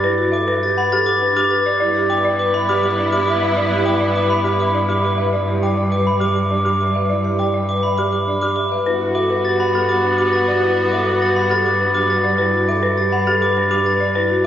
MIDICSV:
0, 0, Header, 1, 7, 480
1, 0, Start_track
1, 0, Key_signature, 1, "major"
1, 0, Tempo, 588235
1, 33, Time_signature, 3, 2, 24, 8
1, 11804, End_track
2, 0, Start_track
2, 0, Title_t, "Glockenspiel"
2, 0, Program_c, 0, 9
2, 272, Note_on_c, 0, 86, 65
2, 428, Note_off_c, 0, 86, 0
2, 516, Note_on_c, 0, 93, 69
2, 635, Note_on_c, 0, 83, 69
2, 670, Note_off_c, 0, 93, 0
2, 753, Note_on_c, 0, 93, 85
2, 790, Note_off_c, 0, 83, 0
2, 867, Note_on_c, 0, 86, 71
2, 909, Note_off_c, 0, 93, 0
2, 1027, Note_off_c, 0, 86, 0
2, 1114, Note_on_c, 0, 86, 90
2, 1229, Note_on_c, 0, 93, 65
2, 1269, Note_off_c, 0, 86, 0
2, 1387, Note_off_c, 0, 93, 0
2, 1712, Note_on_c, 0, 86, 70
2, 1868, Note_off_c, 0, 86, 0
2, 1953, Note_on_c, 0, 86, 73
2, 2072, Note_on_c, 0, 83, 66
2, 2109, Note_off_c, 0, 86, 0
2, 2194, Note_on_c, 0, 86, 81
2, 2228, Note_off_c, 0, 83, 0
2, 2302, Note_off_c, 0, 86, 0
2, 2311, Note_on_c, 0, 86, 70
2, 2468, Note_off_c, 0, 86, 0
2, 2550, Note_on_c, 0, 86, 86
2, 2661, Note_off_c, 0, 86, 0
2, 2671, Note_on_c, 0, 86, 64
2, 2828, Note_off_c, 0, 86, 0
2, 3147, Note_on_c, 0, 86, 64
2, 3307, Note_off_c, 0, 86, 0
2, 3391, Note_on_c, 0, 86, 69
2, 3511, Note_on_c, 0, 83, 67
2, 3548, Note_off_c, 0, 86, 0
2, 3632, Note_on_c, 0, 86, 75
2, 3668, Note_off_c, 0, 83, 0
2, 3743, Note_off_c, 0, 86, 0
2, 3753, Note_on_c, 0, 86, 58
2, 3909, Note_off_c, 0, 86, 0
2, 3996, Note_on_c, 0, 86, 77
2, 4107, Note_off_c, 0, 86, 0
2, 4117, Note_on_c, 0, 86, 58
2, 4270, Note_off_c, 0, 86, 0
2, 4595, Note_on_c, 0, 86, 64
2, 4749, Note_off_c, 0, 86, 0
2, 4830, Note_on_c, 0, 86, 67
2, 4952, Note_on_c, 0, 83, 56
2, 4988, Note_off_c, 0, 86, 0
2, 5070, Note_on_c, 0, 86, 73
2, 5108, Note_off_c, 0, 83, 0
2, 5180, Note_off_c, 0, 86, 0
2, 5189, Note_on_c, 0, 86, 60
2, 5347, Note_off_c, 0, 86, 0
2, 5434, Note_on_c, 0, 86, 70
2, 5544, Note_off_c, 0, 86, 0
2, 5553, Note_on_c, 0, 86, 56
2, 5709, Note_off_c, 0, 86, 0
2, 6030, Note_on_c, 0, 86, 56
2, 6188, Note_off_c, 0, 86, 0
2, 6274, Note_on_c, 0, 86, 62
2, 6389, Note_on_c, 0, 83, 55
2, 6429, Note_off_c, 0, 86, 0
2, 6508, Note_on_c, 0, 86, 64
2, 6547, Note_off_c, 0, 83, 0
2, 6620, Note_off_c, 0, 86, 0
2, 6630, Note_on_c, 0, 86, 57
2, 6788, Note_off_c, 0, 86, 0
2, 6866, Note_on_c, 0, 86, 73
2, 6974, Note_off_c, 0, 86, 0
2, 6984, Note_on_c, 0, 86, 55
2, 7145, Note_off_c, 0, 86, 0
2, 7465, Note_on_c, 0, 86, 62
2, 7626, Note_off_c, 0, 86, 0
2, 7709, Note_on_c, 0, 93, 66
2, 7832, Note_on_c, 0, 83, 62
2, 7867, Note_off_c, 0, 93, 0
2, 7954, Note_on_c, 0, 93, 76
2, 7988, Note_off_c, 0, 83, 0
2, 8071, Note_on_c, 0, 86, 57
2, 8109, Note_off_c, 0, 93, 0
2, 8228, Note_off_c, 0, 86, 0
2, 8309, Note_on_c, 0, 86, 73
2, 8428, Note_on_c, 0, 93, 61
2, 8467, Note_off_c, 0, 86, 0
2, 8587, Note_off_c, 0, 93, 0
2, 8908, Note_on_c, 0, 86, 63
2, 9067, Note_off_c, 0, 86, 0
2, 9153, Note_on_c, 0, 93, 67
2, 9272, Note_on_c, 0, 83, 63
2, 9309, Note_off_c, 0, 93, 0
2, 9393, Note_on_c, 0, 93, 79
2, 9428, Note_off_c, 0, 83, 0
2, 9512, Note_on_c, 0, 86, 63
2, 9549, Note_off_c, 0, 93, 0
2, 9668, Note_off_c, 0, 86, 0
2, 9748, Note_on_c, 0, 86, 77
2, 9874, Note_on_c, 0, 93, 64
2, 9907, Note_off_c, 0, 86, 0
2, 10029, Note_off_c, 0, 93, 0
2, 10352, Note_on_c, 0, 86, 66
2, 10508, Note_off_c, 0, 86, 0
2, 10588, Note_on_c, 0, 93, 63
2, 10707, Note_on_c, 0, 83, 59
2, 10747, Note_off_c, 0, 93, 0
2, 10828, Note_on_c, 0, 93, 79
2, 10867, Note_off_c, 0, 83, 0
2, 10951, Note_on_c, 0, 86, 62
2, 10987, Note_off_c, 0, 93, 0
2, 11108, Note_off_c, 0, 86, 0
2, 11187, Note_on_c, 0, 86, 85
2, 11311, Note_on_c, 0, 93, 59
2, 11347, Note_off_c, 0, 86, 0
2, 11468, Note_off_c, 0, 93, 0
2, 11804, End_track
3, 0, Start_track
3, 0, Title_t, "Marimba"
3, 0, Program_c, 1, 12
3, 32, Note_on_c, 1, 71, 87
3, 188, Note_off_c, 1, 71, 0
3, 262, Note_on_c, 1, 76, 71
3, 390, Note_on_c, 1, 71, 77
3, 425, Note_off_c, 1, 76, 0
3, 548, Note_off_c, 1, 71, 0
3, 631, Note_on_c, 1, 78, 74
3, 757, Note_on_c, 1, 67, 91
3, 788, Note_off_c, 1, 78, 0
3, 910, Note_off_c, 1, 67, 0
3, 999, Note_on_c, 1, 71, 72
3, 1114, Note_on_c, 1, 67, 83
3, 1151, Note_off_c, 1, 71, 0
3, 1269, Note_off_c, 1, 67, 0
3, 1355, Note_on_c, 1, 74, 66
3, 1460, Note_off_c, 1, 74, 0
3, 1470, Note_on_c, 1, 74, 90
3, 1628, Note_off_c, 1, 74, 0
3, 1710, Note_on_c, 1, 79, 72
3, 1834, Note_on_c, 1, 74, 80
3, 1868, Note_off_c, 1, 79, 0
3, 1989, Note_off_c, 1, 74, 0
3, 2076, Note_on_c, 1, 83, 72
3, 2197, Note_on_c, 1, 67, 92
3, 2230, Note_off_c, 1, 83, 0
3, 2350, Note_off_c, 1, 67, 0
3, 2432, Note_on_c, 1, 74, 69
3, 2550, Note_on_c, 1, 67, 80
3, 2589, Note_off_c, 1, 74, 0
3, 2708, Note_off_c, 1, 67, 0
3, 2789, Note_on_c, 1, 76, 67
3, 2909, Note_on_c, 1, 74, 87
3, 2947, Note_off_c, 1, 76, 0
3, 3067, Note_off_c, 1, 74, 0
3, 3147, Note_on_c, 1, 79, 70
3, 3268, Note_on_c, 1, 74, 80
3, 3307, Note_off_c, 1, 79, 0
3, 3427, Note_off_c, 1, 74, 0
3, 3504, Note_on_c, 1, 83, 71
3, 3625, Note_on_c, 1, 67, 84
3, 3665, Note_off_c, 1, 83, 0
3, 3786, Note_off_c, 1, 67, 0
3, 3870, Note_on_c, 1, 74, 69
3, 3989, Note_on_c, 1, 67, 81
3, 4028, Note_off_c, 1, 74, 0
3, 4147, Note_off_c, 1, 67, 0
3, 4225, Note_on_c, 1, 76, 65
3, 4349, Note_on_c, 1, 74, 75
3, 4386, Note_off_c, 1, 76, 0
3, 4507, Note_off_c, 1, 74, 0
3, 4593, Note_on_c, 1, 79, 62
3, 4709, Note_on_c, 1, 74, 73
3, 4749, Note_off_c, 1, 79, 0
3, 4867, Note_off_c, 1, 74, 0
3, 4951, Note_on_c, 1, 83, 64
3, 5062, Note_on_c, 1, 67, 79
3, 5108, Note_off_c, 1, 83, 0
3, 5225, Note_off_c, 1, 67, 0
3, 5309, Note_on_c, 1, 74, 65
3, 5425, Note_on_c, 1, 67, 71
3, 5467, Note_off_c, 1, 74, 0
3, 5586, Note_off_c, 1, 67, 0
3, 5672, Note_on_c, 1, 76, 57
3, 5790, Note_on_c, 1, 74, 77
3, 5828, Note_off_c, 1, 76, 0
3, 5948, Note_off_c, 1, 74, 0
3, 6033, Note_on_c, 1, 79, 56
3, 6153, Note_on_c, 1, 74, 61
3, 6189, Note_off_c, 1, 79, 0
3, 6309, Note_off_c, 1, 74, 0
3, 6390, Note_on_c, 1, 83, 55
3, 6516, Note_on_c, 1, 67, 76
3, 6548, Note_off_c, 1, 83, 0
3, 6670, Note_off_c, 1, 67, 0
3, 6758, Note_on_c, 1, 74, 60
3, 6876, Note_on_c, 1, 67, 73
3, 6911, Note_off_c, 1, 74, 0
3, 7030, Note_off_c, 1, 67, 0
3, 7114, Note_on_c, 1, 76, 56
3, 7233, Note_on_c, 1, 71, 78
3, 7269, Note_off_c, 1, 76, 0
3, 7389, Note_off_c, 1, 71, 0
3, 7467, Note_on_c, 1, 76, 59
3, 7591, Note_on_c, 1, 71, 67
3, 7627, Note_off_c, 1, 76, 0
3, 7748, Note_off_c, 1, 71, 0
3, 7833, Note_on_c, 1, 78, 66
3, 7957, Note_on_c, 1, 67, 74
3, 7989, Note_off_c, 1, 78, 0
3, 8110, Note_off_c, 1, 67, 0
3, 8198, Note_on_c, 1, 71, 62
3, 8315, Note_on_c, 1, 67, 73
3, 8351, Note_off_c, 1, 71, 0
3, 8469, Note_off_c, 1, 67, 0
3, 8552, Note_on_c, 1, 74, 62
3, 8672, Note_on_c, 1, 71, 78
3, 8708, Note_off_c, 1, 74, 0
3, 8828, Note_off_c, 1, 71, 0
3, 8917, Note_on_c, 1, 76, 60
3, 9025, Note_on_c, 1, 71, 72
3, 9070, Note_off_c, 1, 76, 0
3, 9186, Note_off_c, 1, 71, 0
3, 9271, Note_on_c, 1, 78, 64
3, 9386, Note_on_c, 1, 67, 86
3, 9428, Note_off_c, 1, 78, 0
3, 9546, Note_off_c, 1, 67, 0
3, 9628, Note_on_c, 1, 71, 66
3, 9749, Note_on_c, 1, 67, 74
3, 9787, Note_off_c, 1, 71, 0
3, 9907, Note_off_c, 1, 67, 0
3, 9984, Note_on_c, 1, 74, 62
3, 10104, Note_on_c, 1, 71, 80
3, 10146, Note_off_c, 1, 74, 0
3, 10266, Note_off_c, 1, 71, 0
3, 10351, Note_on_c, 1, 76, 65
3, 10467, Note_on_c, 1, 71, 75
3, 10508, Note_off_c, 1, 76, 0
3, 10627, Note_off_c, 1, 71, 0
3, 10710, Note_on_c, 1, 78, 70
3, 10830, Note_on_c, 1, 67, 88
3, 10868, Note_off_c, 1, 78, 0
3, 10988, Note_off_c, 1, 67, 0
3, 11075, Note_on_c, 1, 71, 70
3, 11186, Note_on_c, 1, 67, 85
3, 11230, Note_off_c, 1, 71, 0
3, 11346, Note_off_c, 1, 67, 0
3, 11426, Note_on_c, 1, 74, 69
3, 11550, Note_on_c, 1, 71, 82
3, 11586, Note_off_c, 1, 74, 0
3, 11708, Note_off_c, 1, 71, 0
3, 11804, End_track
4, 0, Start_track
4, 0, Title_t, "Vibraphone"
4, 0, Program_c, 2, 11
4, 29, Note_on_c, 2, 64, 73
4, 147, Note_on_c, 2, 66, 91
4, 187, Note_off_c, 2, 64, 0
4, 271, Note_on_c, 2, 69, 69
4, 307, Note_off_c, 2, 66, 0
4, 428, Note_off_c, 2, 69, 0
4, 512, Note_on_c, 2, 67, 86
4, 630, Note_on_c, 2, 71, 71
4, 668, Note_off_c, 2, 67, 0
4, 751, Note_on_c, 2, 69, 65
4, 788, Note_off_c, 2, 71, 0
4, 908, Note_off_c, 2, 69, 0
4, 989, Note_on_c, 2, 62, 73
4, 1147, Note_off_c, 2, 62, 0
4, 1230, Note_on_c, 2, 71, 85
4, 1350, Note_on_c, 2, 67, 77
4, 1388, Note_off_c, 2, 71, 0
4, 1470, Note_on_c, 2, 64, 69
4, 1508, Note_off_c, 2, 67, 0
4, 1588, Note_on_c, 2, 67, 84
4, 1628, Note_off_c, 2, 64, 0
4, 1710, Note_on_c, 2, 74, 66
4, 1747, Note_off_c, 2, 67, 0
4, 1868, Note_off_c, 2, 74, 0
4, 1951, Note_on_c, 2, 71, 86
4, 2075, Note_on_c, 2, 76, 71
4, 2108, Note_off_c, 2, 71, 0
4, 2194, Note_on_c, 2, 74, 70
4, 2229, Note_off_c, 2, 76, 0
4, 2349, Note_off_c, 2, 74, 0
4, 2435, Note_on_c, 2, 62, 69
4, 2589, Note_off_c, 2, 62, 0
4, 2674, Note_on_c, 2, 76, 76
4, 2793, Note_on_c, 2, 71, 71
4, 2829, Note_off_c, 2, 76, 0
4, 2913, Note_on_c, 2, 64, 69
4, 2949, Note_off_c, 2, 71, 0
4, 3031, Note_on_c, 2, 67, 83
4, 3069, Note_off_c, 2, 64, 0
4, 3153, Note_on_c, 2, 74, 64
4, 3188, Note_off_c, 2, 67, 0
4, 3309, Note_off_c, 2, 74, 0
4, 3392, Note_on_c, 2, 71, 85
4, 3512, Note_on_c, 2, 76, 66
4, 3548, Note_off_c, 2, 71, 0
4, 3633, Note_on_c, 2, 74, 65
4, 3668, Note_off_c, 2, 76, 0
4, 3789, Note_off_c, 2, 74, 0
4, 3872, Note_on_c, 2, 62, 68
4, 4028, Note_off_c, 2, 62, 0
4, 4111, Note_on_c, 2, 76, 73
4, 4230, Note_on_c, 2, 71, 67
4, 4268, Note_off_c, 2, 76, 0
4, 4352, Note_on_c, 2, 64, 66
4, 4388, Note_off_c, 2, 71, 0
4, 4470, Note_on_c, 2, 67, 76
4, 4508, Note_off_c, 2, 64, 0
4, 4590, Note_on_c, 2, 74, 61
4, 4628, Note_off_c, 2, 67, 0
4, 4748, Note_off_c, 2, 74, 0
4, 4829, Note_on_c, 2, 71, 79
4, 4951, Note_on_c, 2, 76, 65
4, 4987, Note_off_c, 2, 71, 0
4, 5068, Note_on_c, 2, 74, 58
4, 5108, Note_off_c, 2, 76, 0
4, 5227, Note_off_c, 2, 74, 0
4, 5307, Note_on_c, 2, 62, 61
4, 5467, Note_off_c, 2, 62, 0
4, 5551, Note_on_c, 2, 76, 66
4, 5674, Note_on_c, 2, 71, 59
4, 5708, Note_off_c, 2, 76, 0
4, 5792, Note_on_c, 2, 64, 60
4, 5829, Note_off_c, 2, 71, 0
4, 5912, Note_on_c, 2, 67, 73
4, 5948, Note_off_c, 2, 64, 0
4, 6037, Note_on_c, 2, 74, 59
4, 6068, Note_off_c, 2, 67, 0
4, 6190, Note_off_c, 2, 74, 0
4, 6275, Note_on_c, 2, 71, 69
4, 6390, Note_on_c, 2, 76, 63
4, 6429, Note_off_c, 2, 71, 0
4, 6512, Note_on_c, 2, 74, 56
4, 6548, Note_off_c, 2, 76, 0
4, 6668, Note_off_c, 2, 74, 0
4, 6749, Note_on_c, 2, 62, 62
4, 6907, Note_off_c, 2, 62, 0
4, 6991, Note_on_c, 2, 76, 72
4, 7110, Note_on_c, 2, 71, 56
4, 7148, Note_off_c, 2, 76, 0
4, 7229, Note_on_c, 2, 64, 62
4, 7268, Note_off_c, 2, 71, 0
4, 7353, Note_on_c, 2, 66, 75
4, 7387, Note_off_c, 2, 64, 0
4, 7473, Note_on_c, 2, 69, 59
4, 7509, Note_off_c, 2, 66, 0
4, 7629, Note_off_c, 2, 69, 0
4, 7710, Note_on_c, 2, 67, 73
4, 7835, Note_on_c, 2, 71, 60
4, 7868, Note_off_c, 2, 67, 0
4, 7956, Note_on_c, 2, 69, 57
4, 7989, Note_off_c, 2, 71, 0
4, 8110, Note_off_c, 2, 69, 0
4, 8193, Note_on_c, 2, 62, 64
4, 8349, Note_off_c, 2, 62, 0
4, 8431, Note_on_c, 2, 71, 74
4, 8551, Note_on_c, 2, 67, 60
4, 8588, Note_off_c, 2, 71, 0
4, 8673, Note_on_c, 2, 64, 65
4, 8708, Note_off_c, 2, 67, 0
4, 8793, Note_on_c, 2, 66, 77
4, 8829, Note_off_c, 2, 64, 0
4, 8915, Note_on_c, 2, 69, 62
4, 8949, Note_off_c, 2, 66, 0
4, 9069, Note_off_c, 2, 69, 0
4, 9152, Note_on_c, 2, 67, 77
4, 9273, Note_on_c, 2, 71, 67
4, 9309, Note_off_c, 2, 67, 0
4, 9390, Note_on_c, 2, 69, 63
4, 9429, Note_off_c, 2, 71, 0
4, 9548, Note_off_c, 2, 69, 0
4, 9629, Note_on_c, 2, 62, 64
4, 9787, Note_off_c, 2, 62, 0
4, 9871, Note_on_c, 2, 71, 76
4, 9990, Note_on_c, 2, 67, 66
4, 10028, Note_off_c, 2, 71, 0
4, 10110, Note_on_c, 2, 64, 60
4, 10148, Note_off_c, 2, 67, 0
4, 10229, Note_on_c, 2, 66, 82
4, 10268, Note_off_c, 2, 64, 0
4, 10344, Note_on_c, 2, 69, 64
4, 10387, Note_off_c, 2, 66, 0
4, 10506, Note_off_c, 2, 69, 0
4, 10586, Note_on_c, 2, 67, 78
4, 10709, Note_on_c, 2, 71, 71
4, 10746, Note_off_c, 2, 67, 0
4, 10826, Note_on_c, 2, 69, 60
4, 10867, Note_off_c, 2, 71, 0
4, 10944, Note_on_c, 2, 71, 81
4, 10986, Note_off_c, 2, 69, 0
4, 11065, Note_on_c, 2, 62, 70
4, 11106, Note_off_c, 2, 71, 0
4, 11226, Note_off_c, 2, 62, 0
4, 11307, Note_on_c, 2, 71, 75
4, 11429, Note_on_c, 2, 67, 66
4, 11467, Note_off_c, 2, 71, 0
4, 11545, Note_on_c, 2, 64, 65
4, 11587, Note_off_c, 2, 67, 0
4, 11664, Note_on_c, 2, 66, 83
4, 11706, Note_off_c, 2, 64, 0
4, 11804, Note_off_c, 2, 66, 0
4, 11804, End_track
5, 0, Start_track
5, 0, Title_t, "Alto flute"
5, 0, Program_c, 3, 73
5, 1472, Note_on_c, 3, 64, 79
5, 4199, Note_off_c, 3, 64, 0
5, 7225, Note_on_c, 3, 66, 69
5, 9956, Note_off_c, 3, 66, 0
5, 11804, End_track
6, 0, Start_track
6, 0, Title_t, "String section"
6, 0, Program_c, 4, 48
6, 1476, Note_on_c, 4, 59, 70
6, 1476, Note_on_c, 4, 64, 73
6, 4202, Note_off_c, 4, 59, 0
6, 4202, Note_off_c, 4, 64, 0
6, 7230, Note_on_c, 4, 66, 61
6, 7234, Note_on_c, 4, 59, 68
6, 9959, Note_off_c, 4, 66, 0
6, 9961, Note_off_c, 4, 59, 0
6, 11804, End_track
7, 0, Start_track
7, 0, Title_t, "Cello"
7, 0, Program_c, 5, 42
7, 0, Note_on_c, 5, 43, 65
7, 1345, Note_off_c, 5, 43, 0
7, 1474, Note_on_c, 5, 43, 76
7, 7104, Note_off_c, 5, 43, 0
7, 7233, Note_on_c, 5, 43, 65
7, 11804, Note_off_c, 5, 43, 0
7, 11804, End_track
0, 0, End_of_file